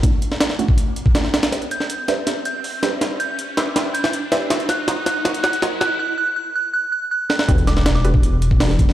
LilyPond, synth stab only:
\new Staff \with { instrumentName = "Synth stab" } { \time 4/4 \key e \minor \tempo 4 = 161 <a cis' d' e' fis'>8 r4 <a cis' d' e' fis'>8 r4 <a cis' d' e' fis'>16 r8. | <g' b' c'' d'' e''>8 r4 <g' b' c'' d'' e''>8 <g' b' c'' d'' e''>8 r4 <g' b' c'' d'' e''>8 | <g' b' c'' d'' e''>8 r4 <g' b' c'' d'' e''>8 <g' b' c'' d'' e''>8 r4 <g' b' c'' d'' e''>8 | <fis' ais' c'' cis'' dis''>8 r8 <fis' ais' c'' cis'' dis''>8 r8 <fis' ais' c'' cis'' dis''>8 r8 <fis' ais' c'' cis'' dis''>8 r8 |
r1 | <d' fis' g' a' b'>8 r4 <d' fis' g' a' b'>8 r4 <d' fis' g' a' b'>16 r8. | }